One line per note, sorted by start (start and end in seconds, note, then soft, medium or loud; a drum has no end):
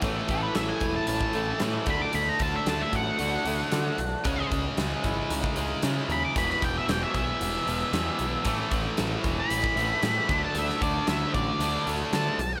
0.01 0.19 A1 loud
0.01 1.33 A2 medium
0.01 1.35 A2 medium
0.01 1.34 E3 medium
0.01 1.32 A3 loud
0.01 kick loud
0.01 closed hi-hat medium
0.28 0.45 A1 medium
0.28 0.42 A4 medium
0.28 kick medium
0.28 closed hi-hat medium
0.43 0.56 B4 medium
0.55 0.72 A1 medium
0.55 1.33 A3 medium
0.55 0.68 E5 medium
0.55 snare loud
0.55 closed hi-hat loud
0.68 0.94 G#5 medium
0.80 0.98 E1 medium
0.80 1.60 E4 medium
0.80 kick medium
0.80 closed hi-hat medium
0.96 1.07 A5 medium
1.07 1.24 A1 medium
1.07 1.87 C#4 medium
1.07 1.60 A5 medium
1.07 closed hi-hat loud
1.21 kick medium
1.33 1.51 A1 medium
1.33 1.59 A2 medium
1.33 1.60 E3 medium
1.33 1.59 A3 medium
1.33 1.88 A3 medium
1.33 closed hi-hat medium
1.60 1.86 A2 medium
1.60 1.77 A2 medium
1.60 1.86 E3 medium
1.60 1.86 A3 medium
1.60 1.88 E4 medium
1.60 snare loud
1.60 closed hi-hat loud
1.86 2.03 D2 medium
1.86 3.18 D3 medium
1.86 2.12 D3 medium
1.86 3.18 A3 medium
1.86 3.19 D4 medium
1.86 kick loud
1.86 closed hi-hat medium
1.90 2.02 B5 loud
2.02 2.15 D6 medium
2.13 2.30 D2 loud
2.13 3.46 D3 medium
2.13 2.29 B5 medium
2.13 closed hi-hat medium
2.29 2.41 A#5 medium
2.39 2.56 D2 medium
2.39 2.54 A5 medium
2.39 kick medium
2.39 closed hi-hat medium
2.56 2.68 E5 medium
2.66 2.83 D2 medium
2.66 3.46 A3 medium
2.66 2.81 A5 medium
2.66 snare loud
2.66 closed hi-hat medium
2.82 2.95 E5 medium
2.93 3.09 A1 medium
2.93 3.72 F#4 medium
2.93 4.49 F#5 medium
2.93 kick medium
2.93 closed hi-hat medium
3.19 3.36 D2 medium
3.19 3.44 D3 medium
3.19 3.45 A3 medium
3.19 3.99 D4 medium
3.19 3.44 D4 medium
3.19 closed hi-hat medium
3.45 3.62 D2 medium
3.45 3.98 D3 medium
3.45 3.98 A3 medium
3.45 4.26 A3 medium
3.45 3.97 D4 medium
3.45 closed hi-hat medium
3.72 3.89 D3 medium
3.72 4.26 F#4 medium
3.72 snare loud
3.72 closed hi-hat loud
3.98 4.14 B1 medium
3.98 4.26 D4 medium
3.98 closed hi-hat medium
4.24 4.41 C#2 loud
4.24 5.55 C#3 medium
4.24 5.57 C#3 medium
4.24 5.55 G#3 medium
4.24 5.55 C#4 loud
4.24 kick loud
4.24 closed hi-hat medium
4.51 4.67 C#2 medium
4.51 kick medium
4.51 closed hi-hat medium
4.77 4.93 C#2 medium
4.77 5.56 G#3 medium
4.77 snare loud
4.77 closed hi-hat medium
5.04 5.20 G#1 medium
5.04 5.82 E4 medium
5.04 kick medium
5.04 closed hi-hat medium
5.30 5.46 C#2 medium
5.30 6.08 D#4 medium
5.30 closed hi-hat loud
5.44 kick medium
5.56 5.73 C#2 medium
5.56 5.82 C#3 medium
5.56 6.36 G#3 medium
5.56 5.82 G#3 medium
5.56 5.81 C#4 medium
5.56 closed hi-hat medium
5.82 6.34 C#3 medium
5.82 6.00 C#3 medium
5.82 6.35 G#3 medium
5.82 6.35 C#4 medium
5.82 6.36 E4 medium
5.82 snare loud
5.82 closed hi-hat loud
6.09 6.25 D#2 medium
6.09 6.36 D#4 medium
6.09 6.24 B5 loud
6.09 closed hi-hat medium
6.25 6.37 D6 medium
6.35 6.52 E1 medium
6.35 7.65 E2 medium
6.35 7.66 B2 loud
6.35 7.64 E3 medium
6.35 6.50 B5 medium
6.35 kick loud
6.35 closed hi-hat medium
6.50 6.63 B5 medium
6.50 snare soft
6.62 6.78 E1 medium
6.62 6.76 G5 medium
6.62 kick medium
6.62 closed hi-hat medium
6.78 6.89 E5 medium
6.88 7.04 E1 medium
6.88 7.03 G5 medium
6.88 snare loud
6.88 closed hi-hat medium
7.03 7.15 E5 medium
7.14 7.31 B1 medium
7.14 8.69 E5 loud
7.14 kick medium
7.14 closed hi-hat medium
7.41 7.57 E1 medium
7.41 closed hi-hat medium
7.65 7.83 E1 medium
7.65 7.91 E2 medium
7.65 7.92 B2 medium
7.65 7.91 E3 medium
7.65 closed hi-hat medium
7.92 8.44 E2 medium
7.92 8.09 E2 medium
7.92 8.44 B2 medium
7.92 8.44 E3 medium
7.92 snare loud
7.92 closed hi-hat medium
8.19 8.35 B1 medium
8.19 closed hi-hat medium
8.44 8.62 A1 loud
8.44 9.75 A2 medium
8.44 9.75 E3 loud
8.44 9.75 A3 loud
8.44 kick loud
8.44 closed hi-hat medium
8.71 8.87 A1 medium
8.71 kick medium
8.71 closed hi-hat medium
8.97 9.15 A1 medium
8.97 snare loud
8.97 closed hi-hat loud
9.24 9.41 E1 medium
9.24 kick medium
9.24 closed hi-hat medium
9.40 10.41 B5 loud
9.50 9.67 A1 medium
9.50 closed hi-hat loud
9.64 kick medium
9.76 9.92 A1 medium
9.76 10.01 A2 medium
9.76 10.02 E3 medium
9.76 10.02 A3 medium
9.76 closed hi-hat medium
10.02 10.27 A2 medium
10.02 10.19 A2 medium
10.02 10.28 E3 medium
10.02 10.29 A3 medium
10.02 snare loud
10.02 closed hi-hat loud
10.29 10.45 D2 medium
10.29 11.59 D3 medium
10.29 11.59 A3 medium
10.29 11.60 D4 medium
10.29 kick loud
10.29 closed hi-hat medium
10.45 10.57 A5 medium
10.55 10.71 D2 loud
10.55 10.82 E5 medium
10.55 closed hi-hat medium
10.69 snare soft
10.81 10.97 D2 medium
10.81 11.08 D5 loud
10.81 kick medium
10.81 closed hi-hat medium
11.07 11.24 D2 medium
11.07 11.34 E5 loud
11.07 snare loud
11.07 closed hi-hat loud
11.34 11.50 A1 medium
11.34 11.85 D5 loud
11.34 kick medium
11.34 closed hi-hat medium
11.59 11.76 D2 medium
11.59 11.85 D3 medium
11.59 11.86 A3 medium
11.59 11.85 D4 medium
11.59 closed hi-hat medium
11.86 12.03 D2 medium
11.86 12.38 D3 medium
11.86 12.38 A3 medium
11.86 12.37 D4 medium
11.86 closed hi-hat medium
12.13 12.29 D3 medium
12.13 12.60 A5 loud
12.13 snare loud
12.13 closed hi-hat loud
12.38 12.54 B1 medium
12.38 closed hi-hat medium